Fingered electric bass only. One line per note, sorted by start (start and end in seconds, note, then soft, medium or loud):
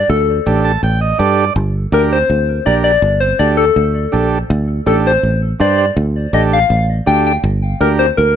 0.10 0.39 D2 loud
0.47 0.76 A1 loud
0.83 1.12 A1 medium
1.19 1.49 G2 medium
1.56 1.85 G1 loud
1.92 2.22 D2 loud
2.30 2.59 D2 medium
2.67 2.96 A#1 medium
3.02 3.32 G1 loud
3.39 3.69 D2 medium
3.76 4.06 D2 medium
4.13 4.43 A#1 medium
4.50 4.79 D2 loud
4.87 5.16 A1 loud
5.23 5.53 A1 medium
5.60 5.90 G2 medium
5.97 6.26 D2 loud
6.33 6.63 A1 loud
6.70 7.00 A1 loud
7.07 7.37 D2 loud
7.43 7.73 G1 loud
7.81 8.10 D2 medium
8.18 8.36 D2 medium